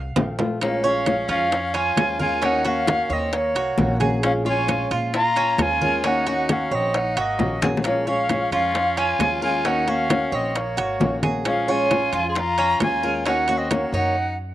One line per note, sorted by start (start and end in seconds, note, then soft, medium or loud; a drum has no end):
0.00 0.12 C2 loud
0.00 0.35 F5 medium
0.16 1.23 A#1 medium
0.16 0.38 F3 soft
0.16 0.38 A3 medium
0.16 0.39 C4 medium
0.16 0.38 F4 medium
0.16 high bongo soft
0.16 low bongo medium
0.16 high conga medium
0.16 high timbale loud
0.39 0.60 F3 medium
0.39 0.61 A3 medium
0.39 0.61 C4 medium
0.39 0.61 F4 medium
0.39 high conga medium
0.39 low timbale loud
0.61 0.83 F3 medium
0.61 0.84 G#3 medium
0.61 0.85 A#3 medium
0.61 0.84 C#4 medium
0.61 0.83 F4 medium
0.61 0.88 C#5 medium
0.61 high bongo medium
0.61 high conga soft
0.61 high timbale medium
0.84 1.06 G#3 medium
0.84 1.29 C#4 medium
0.84 1.06 C#4 medium
0.84 1.06 F4 medium
0.84 1.28 C#5 medium
0.84 1.30 F5 medium
0.84 high bongo soft
0.84 high conga soft
1.06 1.50 F3 soft
1.06 1.50 G#3 medium
1.06 1.51 C#4 medium
1.06 1.51 F4 medium
1.06 high bongo medium
1.06 high conga medium
1.06 high timbale medium
1.06 low timbale medium
1.29 1.93 F2 loud
1.29 1.76 C#4 medium
1.29 1.73 F4 medium
1.29 1.77 F5 loud
1.29 high bongo soft
1.29 high conga soft
1.29 high timbale medium
1.51 muted nylon-string guitar stroke medium
1.51 high bongo medium
1.51 high conga soft
1.51 high timbale medium
1.74 2.18 C#4 medium
1.74 2.20 F4 medium
1.74 2.20 G#5 loud
1.74 high bongo soft
1.74 high conga soft
1.74 high timbale medium
1.96 3.04 D#2 medium
1.96 2.18 F3 medium
1.96 2.19 G#3 medium
1.96 2.19 C#4 medium
1.96 2.18 F4 medium
1.96 high bongo soft
1.96 low bongo medium
1.96 high conga soft
1.96 high timbale loud
1.96 low timbale medium
2.19 2.42 G#3 medium
2.19 2.42 C#4 medium
2.19 2.41 F4 medium
2.19 2.45 F4 medium
2.19 2.42 A#4 medium
2.19 2.46 G#5 loud
2.19 high conga medium
2.41 2.64 D#3 medium
2.41 2.64 A#3 medium
2.41 2.64 C#4 medium
2.41 2.67 D#4 medium
2.41 2.63 F#4 medium
2.41 2.69 F#5 loud
2.41 high bongo medium
2.41 high conga soft
2.41 high timbale medium
2.65 2.87 A#3 medium
2.65 3.12 C#4 medium
2.65 2.87 C#4 medium
2.65 3.09 F#4 medium
2.65 2.87 F#4 medium
2.65 3.14 F5 loud
2.65 high bongo soft
2.65 high conga soft
2.65 high timbale medium
2.87 3.31 D#3 soft
2.87 3.32 A#3 medium
2.87 3.32 C#4 soft
2.87 3.32 F#4 medium
2.87 high bongo medium
2.87 high conga loud
2.87 high timbale medium
2.87 low timbale medium
3.10 3.52 D#2 loud
3.10 3.33 C4 medium
3.10 3.54 C#5 medium
3.10 3.34 D#5 medium
3.10 high bongo soft
3.10 high conga soft
3.32 3.97 A#3 medium
3.32 3.98 C#5 medium
3.32 muted nylon-string guitar stroke medium
3.32 high bongo medium
3.32 high conga soft
3.32 high timbale medium
3.55 3.76 C2 medium
3.55 3.99 F#4 medium
3.55 high bongo soft
3.55 high conga soft
3.55 high timbale medium
3.77 4.84 A#1 medium
3.77 3.99 D#3 medium
3.77 4.00 A#3 medium
3.77 3.99 C#4 medium
3.77 3.98 F#4 medium
3.77 high bongo soft
3.77 low bongo medium
3.77 high conga medium
3.77 low timbale medium
4.00 4.23 A#3 medium
4.00 4.22 C#4 medium
4.00 4.22 F#4 medium
4.00 4.44 G#4 medium
4.00 high conga medium
4.00 high timbale medium
4.23 4.45 F3 medium
4.23 4.45 G#3 medium
4.23 4.33 C#4 medium
4.23 4.45 C#4 medium
4.23 4.44 F4 medium
4.23 4.31 F5 medium
4.23 high bongo medium
4.23 high timbale loud
4.45 4.67 G#3 medium
4.45 4.67 C#4 medium
4.45 4.67 F4 medium
4.45 4.88 F4 medium
4.45 4.90 C#5 medium
4.45 4.89 G#5 loud
4.45 high bongo soft
4.45 high conga soft
4.68 5.12 F3 medium
4.68 5.13 G#3 medium
4.68 5.13 C#4 medium
4.68 5.13 F4 medium
4.68 high bongo medium
4.68 high conga medium
4.68 high timbale medium
4.68 low timbale medium
4.91 5.55 A#2 loud
4.91 5.35 F4 medium
4.91 high bongo soft
4.91 high conga soft
4.91 high timbale medium
5.14 5.60 F4 medium
5.14 5.62 A#5 loud
5.14 muted nylon-string guitar stroke medium
5.14 high bongo medium
5.14 high conga soft
5.14 high timbale medium
5.36 5.80 C#4 medium
5.36 high bongo soft
5.36 high conga soft
5.36 high timbale medium
5.58 6.65 D#2 medium
5.58 5.80 F3 soft
5.58 5.81 G#3 medium
5.58 5.81 C#4 medium
5.58 6.07 F4 medium
5.58 5.80 F4 medium
5.58 6.08 G#5 loud
5.58 high bongo soft
5.58 low bongo medium
5.58 high conga soft
5.58 high timbale medium
5.58 low timbale medium
5.81 6.04 G#3 medium
5.81 6.04 C#4 medium
5.81 6.03 F4 medium
5.81 6.03 A#4 medium
5.81 high conga medium
6.04 6.26 D#3 medium
6.04 6.26 A#3 medium
6.04 6.26 C#4 medium
6.04 6.52 D#4 medium
6.04 6.25 F#4 medium
6.04 6.53 F#5 medium
6.04 high bongo medium
6.04 high conga soft
6.04 high timbale medium
6.26 6.49 A#3 medium
6.26 6.49 C#4 medium
6.26 6.48 F#4 medium
6.26 6.70 F#4 medium
6.26 high bongo soft
6.26 high conga soft
6.26 high timbale medium
6.49 6.93 D#3 medium
6.49 6.94 A#3 soft
6.49 6.94 C#4 medium
6.49 6.75 C#4 medium
6.49 6.94 F#4 medium
6.49 6.76 F5 medium
6.49 high bongo medium
6.49 high conga medium
6.49 high timbale medium
6.49 low timbale medium
6.71 7.13 A#1 loud
6.71 6.97 C4 medium
6.71 7.15 C#5 medium
6.71 6.98 D#5 medium
6.71 high bongo soft
6.71 high conga soft
6.94 7.19 D#4 medium
6.94 7.20 F#5 medium
6.94 muted nylon-string guitar stroke medium
6.94 high bongo medium
6.94 high conga soft
6.94 high timbale medium
7.17 7.38 G#1 medium
7.17 7.62 A#3 medium
7.17 7.61 F#4 medium
7.17 7.63 D#5 medium
7.17 high bongo soft
7.17 high conga soft
7.17 high timbale medium
7.39 8.46 A#1 medium
7.39 7.61 D#3 medium
7.39 7.61 A#3 soft
7.39 7.62 C#4 medium
7.39 7.61 F#4 medium
7.39 high bongo soft
7.39 low bongo medium
7.39 high conga medium
7.39 low timbale medium
7.62 7.84 A#3 medium
7.62 7.84 C#4 medium
7.62 7.84 F#4 medium
7.62 8.06 G#4 medium
7.62 high bongo loud
7.62 high conga medium
7.62 high timbale medium
7.77 low bongo medium
7.84 8.06 F3 medium
7.84 8.07 G#3 medium
7.84 8.08 A#3 medium
7.84 8.07 C#4 medium
7.84 8.06 F4 medium
7.84 8.09 C#5 medium
7.84 high bongo medium
7.84 high conga soft
7.84 high timbale medium
8.07 8.28 G#3 medium
8.07 8.52 C#4 medium
8.07 8.29 C#4 medium
8.07 8.29 F4 medium
8.07 8.51 C#5 medium
8.07 8.52 F5 loud
8.07 high bongo soft
8.07 high conga soft
8.29 8.73 F3 medium
8.29 8.74 G#3 medium
8.29 8.74 C#4 medium
8.29 8.74 F4 medium
8.29 high bongo medium
8.29 high conga medium
8.29 high timbale medium
8.29 low timbale medium
8.52 9.15 F2 medium
8.52 8.99 C#4 medium
8.52 8.96 F4 medium
8.52 8.99 F5 loud
8.52 high bongo soft
8.52 high conga soft
8.52 high timbale medium
8.74 muted nylon-string guitar stroke medium
8.74 high bongo medium
8.74 high conga soft
8.74 high timbale medium
8.97 9.41 C#4 medium
8.97 9.42 F4 medium
8.97 9.42 G#5 loud
8.97 high bongo soft
8.97 high conga soft
8.97 high timbale medium
9.19 10.26 D#2 medium
9.19 9.41 F3 medium
9.19 9.41 G#3 medium
9.19 9.42 C#4 medium
9.19 9.40 F4 medium
9.19 high bongo soft
9.19 low bongo medium
9.19 high conga soft
9.19 high timbale medium
9.19 low timbale medium
9.41 9.64 G#3 medium
9.41 9.64 C#4 medium
9.41 9.63 F4 medium
9.41 9.67 F4 medium
9.41 9.64 A#4 medium
9.41 9.67 G#5 loud
9.65 9.86 D#3 medium
9.65 9.87 A#3 medium
9.65 9.87 C#4 medium
9.65 9.89 D#4 medium
9.65 9.86 F#4 medium
9.65 9.90 F#5 medium
9.65 high bongo medium
9.65 high conga soft
9.65 high timbale medium
9.87 10.09 A#3 medium
9.87 10.09 C#4 medium
9.87 10.34 C#4 medium
9.87 10.09 F#4 medium
9.87 10.31 F#4 medium
9.87 10.36 F5 loud
9.87 high bongo soft
9.87 high conga soft
9.87 high timbale medium
10.09 10.54 D#3 medium
10.09 10.54 A#3 soft
10.09 10.54 C#4 medium
10.09 10.54 F#4 medium
10.09 high bongo medium
10.09 high conga medium
10.09 high timbale medium
10.09 low timbale medium
10.32 10.74 A#1 medium
10.32 10.57 C4 medium
10.32 10.76 C#5 medium
10.32 10.58 D#5 medium
10.32 high bongo soft
10.32 high conga soft
10.55 11.23 A#3 medium
10.55 11.24 C#5 medium
10.55 muted nylon-string guitar stroke medium
10.55 high bongo medium
10.55 high conga soft
10.55 high timbale medium
10.77 10.98 G#1 medium
10.77 11.21 F#4 medium
10.77 high bongo soft
10.77 high conga soft
10.77 high timbale medium
11.00 12.06 A#1 loud
11.00 11.22 D#3 soft
11.00 11.22 A#3 medium
11.00 11.22 C#4 medium
11.00 11.21 F#4 medium
11.00 high bongo soft
11.00 low bongo medium
11.00 high conga medium
11.00 low timbale medium
11.22 11.45 A#3 medium
11.22 11.45 C#4 medium
11.22 11.44 F#4 medium
11.22 11.66 G#4 medium
11.22 high conga medium
11.22 high timbale medium
11.45 11.67 F3 medium
11.45 11.67 G#3 medium
11.45 11.67 C#4 medium
11.45 11.71 C#4 medium
11.45 11.67 F4 medium
11.45 11.71 F5 medium
11.45 high bongo medium
11.45 high conga soft
11.45 high timbale medium
11.68 11.90 G#3 medium
11.68 11.90 C#4 medium
11.68 11.89 F4 medium
11.68 12.28 F4 medium
11.68 12.12 C#5 medium
11.68 12.29 G#5 loud
11.68 high bongo soft
11.68 high conga soft
11.90 12.34 F3 medium
11.90 12.35 G#3 medium
11.90 12.35 C#4 medium
11.90 12.35 F4 medium
11.90 high bongo medium
11.90 high conga medium
11.90 high timbale medium
11.90 low timbale medium
12.13 12.76 F2 loud
12.13 12.57 F4 medium
12.13 high bongo soft
12.13 high conga soft
12.13 high timbale medium
12.29 12.38 G#4 medium
12.29 12.40 C6 medium
12.35 12.81 F4 medium
12.35 12.81 A#5 loud
12.35 muted nylon-string guitar stroke medium
12.35 high bongo medium
12.35 high conga soft
12.35 high timbale medium
12.58 13.02 C#4 medium
12.58 high bongo soft
12.58 high conga soft
12.58 high timbale medium
12.80 13.87 D#2 medium
12.80 13.02 F3 soft
12.80 13.03 G#3 medium
12.80 13.03 C#4 medium
12.80 13.23 F4 medium
12.80 13.02 F4 medium
12.80 13.23 G#5 loud
12.80 high bongo soft
12.80 low bongo medium
12.80 high conga soft
12.80 high timbale loud
12.80 low timbale medium
13.03 13.26 G#3 medium
13.03 13.25 C#4 medium
13.03 13.25 F4 medium
13.03 13.25 A#4 medium
13.26 13.47 D#3 medium
13.26 13.47 A#3 medium
13.26 13.47 C#4 medium
13.26 13.48 C#4 medium
13.26 13.58 D#4 medium
13.26 13.46 F#4 medium
13.26 13.59 F#5 loud
13.26 high bongo medium
13.26 high conga soft
13.26 high timbale medium
13.48 13.70 A#3 medium
13.48 13.70 C#4 medium
13.48 13.69 F#4 medium
13.48 13.92 F#4 medium
13.48 high bongo soft
13.48 high conga soft
13.48 high timbale medium
13.57 13.73 C4 medium
13.57 13.73 D#5 medium
13.70 14.14 D#3 soft
13.70 14.15 A#3 medium
13.70 13.93 A#3 medium
13.70 14.15 C#4 medium
13.70 14.15 F#4 medium
13.70 13.94 C#5 medium
13.70 high bongo medium
13.70 high conga medium
13.70 high timbale medium
13.70 low timbale medium
13.93 14.54 F#2 loud
13.93 14.35 D#4 medium
13.93 14.15 C#5 medium
13.93 14.36 F#5 medium
13.93 high bongo soft
13.93 high conga soft